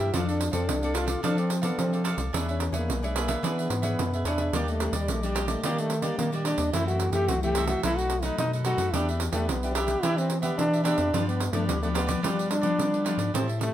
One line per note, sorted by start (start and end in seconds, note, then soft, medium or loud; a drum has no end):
0.00 0.11 G2 medium
0.00 0.15 G4 medium
0.00 0.13 A#4 soft
0.00 0.12 C5 soft
0.00 0.12 E5 medium
0.13 0.49 F2 loud
0.13 0.66 F3 medium
0.13 0.40 C4 medium
0.13 0.27 D4 medium
0.13 0.40 D4 medium
0.13 0.27 F4 medium
0.13 0.27 A4 medium
0.13 0.40 A4 medium
0.13 0.27 D5 medium
0.13 0.27 F5 medium
0.13 pandeiro medium
0.28 0.54 D4 medium
0.28 0.39 A4 soft
0.28 0.39 D5 soft
0.28 0.39 F5 soft
0.28 pandeiro soft
0.40 muted cavaquinho stroke soft
0.40 pandeiro medium
0.51 0.70 F2 medium
0.51 0.69 C4 medium
0.51 0.77 C4 medium
0.51 0.77 D4 medium
0.51 0.81 A4 soft
0.51 0.77 A4 medium
0.51 0.80 D5 soft
0.51 0.80 F5 medium
0.51 pandeiro medium
0.68 1.16 C2 loud
0.68 1.21 C3 medium
0.68 0.96 D4 medium
0.68 pandeiro medium
0.82 1.20 C4 medium
0.82 1.20 D4 medium
0.82 1.20 A4 medium
0.82 0.93 A4 soft
0.82 0.94 D5 soft
0.82 0.94 F5 soft
0.82 pandeiro soft
0.94 1.08 D4 medium
0.94 1.23 F4 medium
0.94 1.07 A4 medium
0.94 1.07 D5 medium
0.94 1.05 F5 medium
0.94 pandeiro medium
1.07 1.22 A4 soft
1.07 1.22 D5 medium
1.07 1.21 F5 medium
1.07 pandeiro medium
1.23 1.76 F3 soft
1.23 1.71 F3 loud
1.23 1.50 C4 medium
1.23 1.36 D4 medium
1.23 1.37 D4 medium
1.23 1.50 D4 medium
1.23 1.36 A4 medium
1.23 1.50 A4 medium
1.23 1.37 D5 medium
1.23 1.36 F5 medium
1.23 pandeiro medium
1.37 1.65 C4 medium
1.37 1.49 A4 soft
1.37 1.49 D5 soft
1.37 1.49 F5 soft
1.37 pandeiro soft
1.50 muted cavaquinho stroke soft
1.50 pandeiro medium
1.62 1.78 B3 medium
1.62 2.01 C4 medium
1.62 2.01 D4 medium
1.62 1.91 A4 medium
1.62 2.01 A4 medium
1.62 1.90 D5 medium
1.62 1.90 F5 medium
1.62 pandeiro medium
1.78 2.31 C3 medium
1.78 2.14 F3 loud
1.78 2.05 C4 medium
1.78 pandeiro medium
1.93 2.03 A4 soft
1.93 2.04 D5 soft
1.93 2.04 F5 medium
1.93 pandeiro soft
2.04 2.22 C4 medium
2.04 2.18 D4 medium
2.04 2.22 D4 soft
2.04 2.17 A4 medium
2.04 2.22 A4 medium
2.04 2.17 D5 medium
2.04 2.16 F5 medium
2.04 pandeiro medium
2.17 2.30 C2 medium
2.17 2.32 A4 soft
2.17 2.32 D5 soft
2.17 2.31 F5 soft
2.17 pandeiro medium
2.33 2.69 E2 loud
2.33 2.86 E3 medium
2.33 2.46 D4 medium
2.33 2.60 D4 medium
2.33 2.46 G#4 medium
2.33 2.60 G#4 medium
2.33 2.47 B4 medium
2.33 2.60 C#5 medium
2.33 2.47 E5 medium
2.33 pandeiro medium
2.48 2.77 C#4 medium
2.48 2.60 G#4 soft
2.48 2.60 B4 soft
2.48 2.60 E5 soft
2.48 pandeiro soft
2.60 muted cavaquinho stroke soft
2.60 pandeiro medium
2.72 2.91 E2 medium
2.72 3.07 A#3 medium
2.72 2.97 D4 medium
2.72 2.97 G#4 medium
2.72 3.01 G#4 soft
2.72 3.01 B4 soft
2.72 2.97 C#5 medium
2.72 3.01 E5 soft
2.72 pandeiro medium
2.88 3.36 B1 loud
2.88 3.41 B2 medium
2.88 pandeiro medium
3.03 3.17 G#3 medium
3.03 3.26 D4 medium
3.03 3.26 G#4 medium
3.03 3.15 G#4 soft
3.03 3.16 B4 soft
3.03 3.26 C#5 medium
3.03 3.16 E5 soft
3.03 pandeiro soft
3.16 3.48 A#3 medium
3.16 3.29 D4 medium
3.16 3.28 G#4 medium
3.16 3.28 B4 medium
3.16 3.27 E5 medium
3.16 pandeiro medium
3.28 3.38 D4 medium
3.28 3.38 G#4 medium
3.28 3.42 G#4 medium
3.28 3.42 B4 medium
3.28 3.39 C#5 medium
3.28 3.42 E5 medium
3.28 pandeiro medium
3.42 3.96 E3 medium
3.42 3.67 E3 loud
3.42 4.27 B3 loud
3.42 3.69 D4 medium
3.42 3.56 D4 medium
3.42 3.69 G#4 medium
3.42 3.57 G#4 medium
3.42 3.57 B4 medium
3.42 3.69 C#5 medium
3.42 3.57 E5 medium
3.42 pandeiro medium
3.58 3.69 G#4 soft
3.58 3.70 B4 soft
3.58 3.70 E5 medium
3.58 pandeiro soft
3.70 3.95 G#2 medium
3.70 muted cavaquinho stroke soft
3.70 pandeiro medium
3.82 4.21 D4 medium
3.82 4.21 G#4 medium
3.82 4.11 G#4 medium
3.82 4.11 B4 medium
3.82 4.21 C#5 medium
3.82 4.10 E5 medium
3.82 pandeiro medium
3.99 4.24 F#2 medium
3.99 4.51 B2 medium
3.99 pandeiro medium
4.13 4.25 G#4 soft
4.13 4.26 B4 soft
4.13 4.26 E5 soft
4.13 pandeiro soft
4.25 4.50 E2 medium
4.25 4.49 D4 medium
4.25 4.39 D4 medium
4.25 4.52 D4 medium
4.25 4.49 G#4 medium
4.25 4.39 G#4 medium
4.25 4.39 B4 medium
4.25 4.50 C#5 medium
4.25 4.38 E5 medium
4.25 pandeiro medium
4.38 4.53 G#4 soft
4.38 4.53 B4 soft
4.38 4.52 E5 soft
4.38 pandeiro medium
4.53 4.88 D#2 loud
4.53 5.06 D#3 medium
4.53 4.77 G3 medium
4.53 4.77 A#3 medium
4.53 4.72 A#3 medium
4.53 4.67 D4 medium
4.53 4.78 D4 medium
4.53 4.67 G4 medium
4.53 4.67 D5 medium
4.53 4.67 D#5 medium
4.53 pandeiro medium
4.68 4.97 A3 medium
4.68 4.79 G4 soft
4.68 4.80 D5 soft
4.68 4.79 D#5 soft
4.68 pandeiro soft
4.80 5.18 G3 medium
4.80 5.18 A#3 medium
4.80 5.18 D4 medium
4.80 muted cavaquinho stroke soft
4.80 pandeiro medium
4.92 5.11 D#2 medium
4.92 5.12 G3 medium
4.92 5.22 G4 soft
4.92 5.21 D5 soft
4.92 5.21 D#5 soft
4.92 pandeiro medium
5.08 5.56 A#1 loud
5.08 5.61 A#2 medium
5.08 5.26 A3 medium
5.08 pandeiro medium
5.23 5.60 G3 medium
5.23 5.47 G3 medium
5.23 5.60 A#3 medium
5.23 5.60 D4 medium
5.23 5.34 G4 soft
5.23 5.36 D5 soft
5.23 5.35 D#5 soft
5.23 pandeiro soft
5.35 5.48 D4 medium
5.35 5.48 G4 medium
5.35 5.46 D5 medium
5.35 5.47 D#5 medium
5.35 pandeiro medium
5.48 5.65 A3 medium
5.48 5.62 G4 medium
5.48 5.62 D5 medium
5.48 5.62 D#5 medium
5.48 pandeiro medium
5.63 6.11 D#3 loud
5.63 6.16 D#3 soft
5.63 5.90 G3 medium
5.63 5.81 A#3 loud
5.63 5.90 A#3 soft
5.63 5.77 D4 medium
5.63 5.90 D4 medium
5.63 5.77 G4 medium
5.63 5.77 D5 medium
5.63 5.77 D#5 medium
5.63 pandeiro medium
5.78 6.04 A3 medium
5.78 5.91 D5 soft
5.78 5.90 D#5 soft
5.78 pandeiro soft
5.90 muted cavaquinho stroke soft
5.90 pandeiro medium
6.02 6.27 G3 medium
6.02 6.17 A#3 medium
6.02 6.27 A#3 medium
6.02 6.28 D4 medium
6.02 6.31 G4 medium
6.02 6.30 D5 medium
6.02 6.31 D#5 medium
6.02 pandeiro medium
6.18 6.71 A#2 medium
6.18 6.54 D#3 medium
6.18 6.31 A#3 medium
6.18 pandeiro medium
6.32 6.69 G3 medium
6.32 6.69 A#3 medium
6.32 6.70 D4 medium
6.32 6.45 G4 soft
6.32 6.46 D5 soft
6.32 6.46 D#5 soft
6.32 pandeiro soft
6.44 6.71 D4 medium
6.44 6.59 D4 medium
6.44 6.59 G4 medium
6.44 6.58 D5 medium
6.44 6.59 D#5 medium
6.44 pandeiro medium
6.58 6.71 D#2 medium
6.58 6.73 G4 soft
6.58 6.72 D5 soft
6.58 6.73 D#5 soft
6.58 pandeiro medium
6.73 7.09 F#2 loud
6.73 7.26 F#2 medium
6.73 7.10 E3 medium
6.73 7.11 A3 medium
6.73 7.11 C4 medium
6.73 6.86 E4 loud
6.73 6.87 F#4 medium
6.73 6.87 A4 medium
6.73 6.88 C5 medium
6.73 pandeiro medium
6.77 6.88 E5 medium
6.87 7.14 F#4 medium
6.87 7.02 E5 soft
6.87 pandeiro soft
6.91 7.01 A4 soft
6.91 7.01 C5 soft
7.00 muted cavaquinho stroke soft
7.00 pandeiro medium
7.12 7.30 F#2 medium
7.12 7.37 E3 medium
7.12 7.37 A3 medium
7.12 7.37 C4 medium
7.12 7.29 G4 loud
7.12 7.42 C5 soft
7.12 7.41 E5 soft
7.12 pandeiro medium
7.16 7.42 A4 soft
7.28 7.75 C2 loud
7.28 7.82 F#2 medium
7.28 7.42 F#4 medium
7.28 pandeiro medium
7.43 7.80 E3 medium
7.43 7.80 A3 medium
7.43 7.80 C4 medium
7.43 7.67 G4 medium
7.43 7.55 A4 soft
7.43 7.56 C5 soft
7.43 7.56 E5 soft
7.43 pandeiro soft
7.55 7.69 F#4 medium
7.55 7.69 A4 medium
7.55 7.69 C5 medium
7.55 7.68 E5 medium
7.55 pandeiro medium
7.67 7.82 F#4 medium
7.67 7.83 A4 medium
7.67 7.83 C5 medium
7.67 7.82 E5 medium
7.67 pandeiro medium
7.83 8.31 B1 loud
7.83 8.36 B2 medium
7.83 8.21 F#3 medium
7.83 8.21 A3 medium
7.83 7.97 D#4 medium
7.83 8.21 D#4 medium
7.83 7.99 E4 loud
7.83 7.97 A4 medium
7.83 7.97 B4 medium
7.83 7.97 D#5 medium
7.83 pandeiro medium
7.97 8.24 F#4 loud
7.97 8.10 B4 soft
7.97 8.11 D#5 soft
7.97 pandeiro soft
8.01 8.10 A4 soft
8.10 muted cavaquinho stroke soft
8.10 pandeiro medium
8.22 8.61 F#3 medium
8.22 8.61 A3 medium
8.22 8.38 D#4 medium
8.22 8.61 D#4 medium
8.22 8.52 A4 medium
8.22 8.51 B4 medium
8.22 8.51 D#5 medium
8.22 pandeiro medium
8.38 8.91 F#2 medium
8.38 8.74 B2 loud
8.38 8.52 D#4 loud
8.38 pandeiro medium
8.53 8.65 A4 soft
8.53 8.66 B4 soft
8.53 8.66 D#5 medium
8.53 pandeiro soft
8.64 8.89 F#3 medium
8.64 8.89 A3 medium
8.64 8.79 D#4 medium
8.64 8.89 D#4 medium
8.64 8.96 F#4 loud
8.64 8.79 A4 medium
8.64 8.78 B4 medium
8.64 8.77 D#5 medium
8.64 pandeiro medium
8.78 8.90 F#2 medium
8.78 8.93 A4 soft
8.78 8.92 B4 soft
8.78 8.92 D#5 medium
8.78 pandeiro medium
8.93 9.29 E2 loud
8.93 9.46 E3 medium
8.93 9.31 B3 medium
8.93 9.07 D4 medium
8.93 9.08 D4 medium
8.93 9.31 D4 medium
8.93 9.07 G4 medium
8.93 9.31 G4 medium
8.93 9.07 B4 medium
8.93 9.07 E5 medium
8.93 pandeiro medium
9.09 9.19 G4 soft
9.09 9.20 B4 soft
9.09 9.20 E5 soft
9.09 pandeiro soft
9.20 muted cavaquinho stroke soft
9.20 pandeiro medium
9.32 9.50 E2 loud
9.32 9.47 A3 medium
9.32 9.57 B3 medium
9.32 9.57 D4 medium
9.32 9.61 G4 soft
9.32 9.57 G4 medium
9.32 9.61 B4 soft
9.32 9.60 E5 soft
9.32 pandeiro medium
9.48 9.95 B1 loud
9.48 10.01 B2 medium
9.48 9.76 B3 medium
9.48 pandeiro medium
9.62 10.00 B3 medium
9.62 10.00 D4 medium
9.62 9.74 G4 soft
9.62 10.00 G4 medium
9.62 9.75 B4 soft
9.62 9.75 E5 soft
9.62 pandeiro soft
9.75 9.88 D4 medium
9.75 10.05 G4 loud
9.75 9.88 G4 medium
9.75 9.87 B4 medium
9.75 9.86 E5 medium
9.75 pandeiro medium
9.87 10.02 G4 medium
9.87 10.02 B4 medium
9.87 10.01 E5 medium
9.87 pandeiro medium
10.03 10.56 E3 medium
10.03 10.51 E3 loud
10.03 10.30 B3 medium
10.03 10.16 D4 medium
10.03 10.30 D4 medium
10.03 10.19 E4 loud
10.03 10.17 G4 medium
10.03 10.30 G4 medium
10.03 10.17 B4 medium
10.03 10.16 E5 medium
10.03 pandeiro medium
10.17 10.41 C4 loud
10.17 10.29 G4 soft
10.17 10.30 B4 soft
10.17 10.30 E5 soft
10.17 pandeiro soft
10.30 muted cavaquinho stroke soft
10.30 pandeiro medium
10.41 10.56 B3 medium
10.41 10.81 B3 medium
10.41 10.81 D4 medium
10.41 10.82 G4 medium
10.41 10.71 G4 medium
10.41 10.71 B4 medium
10.41 10.70 E5 medium
10.41 pandeiro medium
10.57 11.11 B2 medium
10.57 10.94 E3 medium
10.57 10.83 D4 loud
10.57 pandeiro medium
10.73 10.83 G4 soft
10.73 10.84 B4 soft
10.73 10.84 E5 medium
10.73 pandeiro soft
10.84 11.09 B3 medium
10.84 10.98 D4 medium
10.84 11.24 D4 loud
10.84 11.09 D4 medium
10.84 10.98 G4 medium
10.84 11.10 G4 medium
10.84 10.97 B4 medium
10.84 10.96 E5 medium
10.84 pandeiro medium
10.98 11.11 F2 medium
10.98 11.13 G4 soft
10.98 11.12 B4 soft
10.98 11.12 E5 soft
10.98 pandeiro medium
11.13 11.66 G2 medium
11.13 11.49 G2 loud
11.13 11.40 F3 medium
11.13 11.40 B3 medium
11.13 11.40 D4 medium
11.13 11.27 F4 medium
11.13 11.27 G4 medium
11.13 11.27 B4 medium
11.13 11.27 D5 medium
11.13 pandeiro medium
11.28 11.54 B3 medium
11.28 11.39 G4 soft
11.28 11.39 B4 medium
11.28 11.40 D5 soft
11.28 pandeiro soft
11.40 muted cavaquinho stroke soft
11.40 pandeiro medium
11.52 11.69 G2 medium
11.52 11.78 F3 medium
11.52 11.66 A3 medium
11.52 11.78 B3 medium
11.52 11.78 D4 medium
11.52 11.82 G4 soft
11.52 11.81 B4 medium
11.52 11.81 D5 medium
11.52 pandeiro medium
11.67 12.15 D2 loud
11.67 12.22 D3 medium
11.67 11.81 G3 medium
11.67 pandeiro medium
11.82 12.07 F3 medium
11.82 11.89 A3 medium
11.82 12.07 B3 medium
11.82 12.07 D4 medium
11.82 11.94 G4 soft
11.82 11.94 B4 soft
11.82 11.95 D5 medium
11.82 pandeiro soft
11.94 12.21 B3 medium
11.94 12.08 F4 medium
11.94 12.08 G4 medium
11.94 12.07 B4 medium
11.94 12.06 D5 medium
11.94 pandeiro medium
12.07 12.19 F3 medium
12.07 12.19 B3 medium
12.07 12.19 D4 medium
12.07 12.22 G4 medium
12.07 12.22 B4 medium
12.07 12.21 D5 medium
12.07 pandeiro medium
12.22 12.77 G2 medium
12.22 12.61 F3 medium
12.22 12.71 G3 loud
12.22 12.50 G3 medium
12.22 12.62 B3 medium
12.22 12.62 D4 medium
12.22 12.36 F4 medium
12.22 12.36 G4 medium
12.22 12.37 B4 medium
12.22 12.37 D5 medium
12.22 pandeiro medium
12.38 12.48 G4 soft
12.38 12.49 B4 soft
12.38 12.49 D5 soft
12.38 pandeiro soft
12.49 13.30 D4 loud
12.49 muted cavaquinho stroke soft
12.49 pandeiro medium
12.61 13.01 F3 medium
12.61 13.02 B3 medium
12.61 13.02 D4 medium
12.61 12.91 G4 medium
12.61 12.91 B4 medium
12.61 12.90 D5 medium
12.61 pandeiro soft
12.79 13.32 D3 medium
12.79 13.14 G3 medium
12.79 pandeiro medium
12.92 13.04 G4 soft
12.92 13.05 B4 soft
12.92 13.05 D5 medium
12.92 pandeiro soft
13.05 13.30 F3 medium
13.05 13.30 B3 medium
13.05 13.30 D4 medium
13.05 13.19 F4 medium
13.05 13.19 G4 medium
13.05 13.18 B4 medium
13.05 13.17 D5 medium
13.05 pandeiro medium
13.18 13.31 G#2 medium
13.18 13.33 G4 soft
13.18 13.33 B4 soft
13.18 13.32 D5 medium
13.18 pandeiro medium
13.34 13.69 A2 loud
13.34 13.74 A2 medium
13.34 13.51 G3 medium
13.34 13.47 C4 medium
13.34 13.51 C4 medium
13.34 13.51 E4 medium
13.34 13.47 G4 medium
13.34 13.47 C5 medium
13.34 13.47 E5 medium
13.34 13.46 A5 medium
13.34 pandeiro medium
13.47 13.58 C5 soft
13.47 13.59 E5 soft
13.47 13.59 A5 soft
13.47 pandeiro soft
13.59 13.74 G3 medium
13.59 13.74 A3 medium
13.59 13.74 C4 medium
13.59 13.74 E4 medium
13.59 muted cavaquinho stroke soft
13.59 pandeiro medium